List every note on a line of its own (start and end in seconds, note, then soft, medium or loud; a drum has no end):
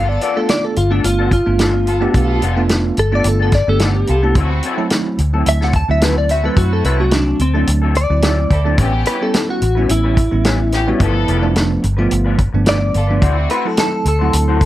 0.00 0.17 G1 medium
0.00 0.48 B3 medium
0.00 0.48 F4 medium
0.00 0.49 A4 medium
0.09 0.21 D5 medium
0.09 muted clean electric guitar stroke soft
0.21 0.38 F3 medium
0.21 0.39 B3 medium
0.21 0.39 D4 medium
0.21 0.39 A4 medium
0.21 0.36 D5 medium
0.21 closed hi-hat medium
0.36 0.75 A3 medium
0.36 0.75 B3 medium
0.36 0.75 D4 medium
0.36 0.76 F4 medium
0.36 0.49 A4 medium
0.48 0.64 D5 medium
0.48 muted clean electric guitar stroke soft
0.48 snare loud
0.48 closed hi-hat medium
0.63 0.76 A4 medium
0.63 muted clean electric guitar stroke soft
0.76 1.01 G1 medium
0.76 0.91 F4 medium
0.76 muted clean electric guitar stroke soft
0.76 closed hi-hat medium
0.91 1.30 A3 medium
0.91 1.30 B3 medium
0.91 1.04 B3 soft
0.91 1.31 D4 medium
0.91 1.04 D4 medium
0.91 1.04 D4 soft
0.91 1.31 F4 medium
0.91 1.04 A4 soft
1.04 1.41 G1 medium
1.04 1.31 F4 medium
1.04 muted clean electric guitar stroke soft
1.04 closed hi-hat medium
1.19 1.30 F3 medium
1.19 1.31 B3 medium
1.19 1.31 D4 medium
1.19 1.32 A4 medium
1.31 2.40 F4 medium
1.31 muted clean electric guitar stroke soft
1.31 kick medium
1.31 closed hi-hat medium
1.46 2.06 G1 medium
1.46 1.86 A3 medium
1.46 1.86 B3 medium
1.46 1.86 D4 medium
1.46 1.86 F4 medium
1.46 muted clean electric guitar stroke soft
1.58 1.74 F3 medium
1.58 1.73 B3 medium
1.58 1.73 D4 medium
1.58 1.72 A4 medium
1.58 snare loud
1.58 closed hi-hat medium
1.73 muted clean electric guitar stroke soft
1.85 2.01 B3 medium
1.85 2.01 F4 medium
1.85 2.02 A4 medium
1.85 closed hi-hat soft
2.00 2.41 A3 medium
2.00 2.41 B3 medium
2.00 2.18 B3 soft
2.00 2.41 D4 medium
2.00 2.18 D4 medium
2.00 2.41 G4 loud
2.00 2.17 A4 medium
2.13 2.38 B1 medium
2.13 2.69 B3 medium
2.13 2.69 F4 medium
2.13 2.70 A4 medium
2.13 kick loud
2.13 closed hi-hat medium
2.28 muted clean electric guitar stroke soft
2.41 2.90 F1 medium
2.41 2.59 F3 medium
2.41 2.59 B3 medium
2.41 2.60 D4 loud
2.41 2.60 A4 medium
2.41 closed hi-hat medium
2.57 2.96 A3 medium
2.57 2.96 B3 medium
2.57 2.96 D4 medium
2.57 2.97 F4 loud
2.69 muted clean electric guitar stroke soft
2.69 snare loud
2.69 closed hi-hat medium
2.84 muted clean electric guitar stroke soft
2.97 3.22 G1 medium
2.97 3.13 A4 medium
2.97 muted clean electric guitar stroke soft
2.97 closed hi-hat medium
3.12 3.51 A3 medium
3.12 3.52 B3 medium
3.12 3.24 B3 soft
3.12 3.52 D4 medium
3.12 3.25 D4 soft
3.12 3.52 F4 medium
3.12 3.25 A4 soft
3.12 3.26 D5 medium
3.24 3.62 G1 medium
3.24 muted clean electric guitar stroke soft
3.24 closed hi-hat medium
3.28 3.41 A4 medium
3.40 3.51 F3 medium
3.40 3.51 B3 medium
3.40 3.52 D4 medium
3.40 3.53 A4 medium
3.40 3.54 A4 medium
3.52 3.68 D5 medium
3.52 muted clean electric guitar stroke soft
3.52 kick medium
3.52 snare soft
3.52 closed hi-hat medium
3.67 4.03 G1 loud
3.67 4.07 A3 medium
3.67 4.07 B3 medium
3.67 4.08 D4 medium
3.67 4.08 G4 medium
3.67 3.82 A4 medium
3.67 muted clean electric guitar stroke soft
3.79 3.95 F3 medium
3.79 3.96 B3 medium
3.79 3.95 D4 medium
3.79 4.35 G4 loud
3.79 snare loud
3.79 closed hi-hat medium
3.84 3.94 A4 medium
3.95 muted clean electric guitar stroke soft
4.07 4.33 C2 medium
4.07 4.22 B3 medium
4.07 4.23 F4 medium
4.07 4.23 A4 medium
4.07 closed hi-hat medium
4.22 4.36 A3 medium
4.22 4.36 B3 medium
4.22 4.36 B3 soft
4.22 4.36 D4 medium
4.22 4.36 D4 soft
4.22 4.36 E4 medium
4.22 4.35 A4 soft
4.35 4.60 D2 medium
4.35 4.50 F#3 medium
4.35 4.91 C4 medium
4.35 4.51 C4 medium
4.35 4.91 E4 medium
4.35 4.50 E4 medium
4.35 4.91 F#4 medium
4.35 4.49 A4 medium
4.35 kick loud
4.35 closed hi-hat medium
4.51 muted clean electric guitar stroke soft
4.63 4.81 F#3 medium
4.63 4.81 C4 medium
4.63 4.82 E4 medium
4.63 4.82 A4 medium
4.63 closed hi-hat medium
4.78 5.17 F#3 medium
4.78 5.17 A3 medium
4.78 5.18 C4 medium
4.78 5.18 E4 loud
4.90 muted clean electric guitar stroke soft
4.90 snare loud
4.90 closed hi-hat medium
5.07 muted clean electric guitar stroke soft
5.18 5.43 D2 medium
5.18 muted clean electric guitar stroke soft
5.18 closed hi-hat medium
5.33 5.73 F#3 medium
5.33 5.73 A3 medium
5.33 5.73 C4 medium
5.33 5.73 E4 medium
5.33 5.47 E4 soft
5.33 5.46 A4 medium
5.37 5.46 C4 soft
5.46 5.83 D2 medium
5.46 5.62 E5 medium
5.46 muted clean electric guitar stroke soft
5.46 closed hi-hat medium
5.61 5.73 F#3 medium
5.61 5.74 C4 medium
5.61 5.74 E4 medium
5.61 5.74 A4 medium
5.61 5.75 F#5 medium
5.61 snare soft
5.73 5.89 A5 medium
5.73 muted clean electric guitar stroke soft
5.73 kick medium
5.73 closed hi-hat medium
5.88 6.48 D2 medium
5.88 6.28 F#3 medium
5.88 6.28 A3 medium
5.88 6.29 C4 medium
5.88 6.29 E4 medium
5.88 6.02 E5 medium
5.88 muted clean electric guitar stroke soft
6.00 6.16 F#3 medium
6.00 6.16 C4 medium
6.00 6.16 E4 medium
6.00 6.15 A4 medium
6.00 6.17 B4 medium
6.00 snare loud
6.00 closed hi-hat medium
6.16 6.30 D5 medium
6.16 muted clean electric guitar stroke soft
6.29 6.44 C4 medium
6.29 6.44 E4 medium
6.29 6.45 F#4 medium
6.29 6.45 E5 medium
6.29 closed hi-hat medium
6.43 6.83 F#3 medium
6.43 6.83 A3 medium
6.43 6.84 C4 medium
6.43 6.61 C4 soft
6.43 6.84 E4 medium
6.43 6.61 E4 soft
6.43 6.60 A4 soft
6.43 6.57 B4 medium
6.57 6.81 F#2 medium
6.57 7.12 C4 medium
6.57 7.13 E4 medium
6.57 6.72 F#4 medium
6.57 7.13 F#4 medium
6.57 kick loud
6.57 closed hi-hat medium
6.72 6.85 A4 medium
6.72 muted clean electric guitar stroke soft
6.84 7.33 C2 medium
6.84 7.02 F#3 medium
6.84 7.02 C4 medium
6.84 7.03 E4 medium
6.84 7.03 A4 medium
6.84 7.00 B4 medium
6.84 closed hi-hat medium
7.00 7.39 F#3 medium
7.00 7.39 A3 medium
7.00 7.39 C4 medium
7.00 7.39 F#4 medium
7.00 7.13 F#4 medium
7.11 7.40 D4 medium
7.11 muted clean electric guitar stroke soft
7.11 snare loud
7.11 closed hi-hat medium
7.26 muted clean electric guitar stroke soft
7.39 7.64 D2 medium
7.39 7.68 C4 medium
7.39 muted clean electric guitar stroke soft
7.39 closed hi-hat medium
7.54 7.94 F#3 medium
7.54 7.94 A3 medium
7.54 7.94 C4 medium
7.54 7.66 C4 soft
7.54 7.94 D4 medium
7.54 7.66 E4 soft
7.54 7.67 A4 medium
7.67 8.05 D2 medium
7.67 muted clean electric guitar stroke soft
7.67 closed hi-hat medium
7.82 7.94 F#3 medium
7.82 7.94 C4 medium
7.82 7.95 E4 medium
7.82 7.95 A4 medium
7.95 8.77 D5 medium
7.95 muted clean electric guitar stroke soft
7.95 closed hi-hat medium
8.10 8.45 D2 loud
8.10 8.50 F#3 medium
8.10 8.50 A3 medium
8.10 8.50 C4 medium
8.10 8.50 E4 medium
8.10 muted clean electric guitar stroke soft
8.22 8.37 F#3 medium
8.22 8.38 C4 medium
8.22 8.38 E4 medium
8.22 8.37 A4 medium
8.22 snare loud
8.22 closed hi-hat medium
8.38 muted clean electric guitar stroke soft
8.50 8.75 D2 loud
8.50 8.65 C4 medium
8.50 8.65 E4 medium
8.50 8.66 A4 medium
8.50 kick medium
8.50 closed hi-hat medium
8.64 8.78 F#3 medium
8.64 8.78 A3 medium
8.64 8.79 C4 medium
8.64 8.78 C4 soft
8.64 8.79 D4 medium
8.64 8.78 E4 soft
8.64 8.78 A4 medium
8.78 9.03 A1 medium
8.78 8.93 G3 medium
8.78 9.34 B3 medium
8.78 8.93 C#4 medium
8.78 9.34 C#4 medium
8.78 8.92 E4 medium
8.78 9.35 G4 medium
8.78 8.91 B4 medium
8.78 kick medium
8.78 closed hi-hat medium
8.93 muted clean electric guitar stroke soft
9.05 9.23 G3 medium
9.05 9.24 C#4 medium
9.05 9.24 E4 medium
9.05 9.21 B4 medium
9.05 9.25 B4 medium
9.05 closed hi-hat medium
9.21 9.61 G3 medium
9.21 9.61 B3 medium
9.21 9.61 C#4 medium
9.21 9.61 E4 medium
9.21 9.49 A4 medium
9.34 muted clean electric guitar stroke soft
9.34 snare loud
9.34 closed hi-hat medium
9.48 9.89 F#4 medium
9.48 muted clean electric guitar stroke soft
9.61 9.86 A1 medium
9.61 muted clean electric guitar stroke soft
9.61 closed hi-hat medium
9.75 10.16 G3 medium
9.75 10.16 B3 medium
9.75 10.16 C#4 medium
9.75 9.89 C#4 soft
9.75 9.89 E4 soft
9.75 10.17 E4 medium
9.75 9.89 B4 medium
9.89 10.26 A1 medium
9.89 11.53 E4 loud
9.89 muted clean electric guitar stroke soft
9.89 closed hi-hat medium
10.04 10.16 G3 medium
10.04 10.17 C#4 medium
10.04 10.17 E4 medium
10.04 10.17 B4 medium
10.17 muted clean electric guitar stroke soft
10.17 kick medium
10.17 closed hi-hat medium
10.31 10.92 A1 medium
10.31 10.71 G3 medium
10.31 10.71 B3 medium
10.31 10.72 C#4 medium
10.31 10.72 E4 medium
10.31 muted clean electric guitar stroke soft
10.44 10.59 G3 medium
10.44 10.59 C#4 medium
10.44 10.58 E4 medium
10.44 10.58 B4 medium
10.44 snare loud
10.44 closed hi-hat medium
10.59 muted clean electric guitar stroke soft
10.72 10.87 B3 medium
10.72 10.87 C#4 medium
10.72 10.88 G4 loud
10.72 snare soft
10.72 closed hi-hat medium
10.87 11.01 G3 medium
10.87 11.00 B3 medium
10.87 11.01 C#4 medium
10.87 10.99 C#4 soft
10.87 11.00 E4 soft
10.87 11.01 F#4 loud
10.87 11.00 B4 medium
10.99 11.24 G1 medium
10.99 11.56 F3 medium
10.99 11.15 A3 medium
10.99 11.55 B3 medium
10.99 11.15 D4 medium
10.99 11.14 F4 medium
10.99 11.56 A4 loud
10.99 11.14 B4 medium
10.99 kick loud
10.99 closed hi-hat medium
11.15 muted clean electric guitar stroke soft
11.27 11.76 F1 medium
11.27 11.45 A3 medium
11.27 11.45 D4 medium
11.27 11.46 F4 medium
11.27 11.46 B4 medium
11.27 closed hi-hat medium
11.42 11.82 F3 loud
11.42 11.82 A3 medium
11.42 11.83 B3 medium
11.42 11.83 D4 loud
11.55 muted clean electric guitar stroke soft
11.55 snare loud
11.55 closed hi-hat medium
11.70 muted clean electric guitar stroke soft
11.83 12.08 G1 medium
11.83 muted clean electric guitar stroke soft
11.83 closed hi-hat medium
11.97 12.38 F3 medium
11.97 12.38 A3 medium
11.97 12.38 B3 medium
11.97 12.09 D4 soft
11.97 12.10 F4 medium
11.97 12.38 F4 loud
11.97 12.11 B4 medium
12.10 12.48 G1 medium
12.10 muted clean electric guitar stroke soft
12.10 closed hi-hat medium
12.24 12.37 A3 medium
12.24 12.37 D4 medium
12.24 12.38 F4 medium
12.24 12.38 B4 medium
12.38 muted clean electric guitar stroke soft
12.38 kick medium
12.38 closed hi-hat medium
12.53 12.89 G1 loud
12.53 12.94 F3 medium
12.53 12.94 A3 medium
12.53 12.94 B3 medium
12.53 12.94 D4 medium
12.53 muted clean electric guitar stroke soft
12.65 12.81 A3 medium
12.65 12.80 D4 medium
12.65 12.79 F4 medium
12.65 12.78 B4 medium
12.65 13.49 D5 loud
12.65 snare loud
12.65 closed hi-hat medium
12.80 muted clean electric guitar stroke soft
12.93 13.19 G1 loud
12.93 13.09 B3 medium
12.93 13.09 F4 medium
12.93 13.10 A4 medium
12.93 closed hi-hat medium
13.07 13.23 F3 medium
13.07 13.23 A3 medium
13.07 13.23 B3 medium
13.07 13.23 D4 medium
13.07 13.21 D4 soft
13.07 13.22 F4 soft
13.07 13.21 B4 medium
13.21 13.46 D2 medium
13.21 13.37 A3 medium
13.21 13.78 C4 medium
13.21 13.37 E4 medium
13.21 13.78 E4 medium
13.21 13.36 F#4 medium
13.21 13.78 F#4 medium
13.21 13.35 C5 medium
13.21 kick medium
13.21 closed hi-hat medium
13.36 muted clean electric guitar stroke soft
13.49 13.67 A3 medium
13.49 13.67 E4 medium
13.49 13.68 F#4 medium
13.49 13.67 B4 medium
13.49 13.68 C5 medium
13.49 closed hi-hat medium
13.65 14.05 F#3 medium
13.65 14.05 A3 medium
13.65 14.05 C4 medium
13.65 14.05 E4 medium
13.65 13.79 A4 medium
13.77 14.06 A4 loud
13.77 muted clean electric guitar stroke soft
13.77 snare loud
13.77 closed hi-hat medium
13.92 muted clean electric guitar stroke soft
14.04 14.30 D2 medium
14.04 14.65 A4 medium
14.04 muted clean electric guitar stroke soft
14.04 closed hi-hat medium
14.19 14.60 F#3 medium
14.19 14.60 A3 medium
14.19 14.60 C4 medium
14.19 14.61 E4 medium
14.19 14.32 E4 soft
14.19 14.33 F#4 soft
14.19 14.33 C5 medium
14.33 14.65 D2 medium
14.33 muted clean electric guitar stroke soft
14.33 closed hi-hat medium
14.48 14.60 A3 medium
14.48 14.60 E4 medium
14.48 14.61 F#4 medium
14.48 14.61 C5 medium
14.61 muted clean electric guitar stroke soft
14.61 kick medium
14.61 closed hi-hat medium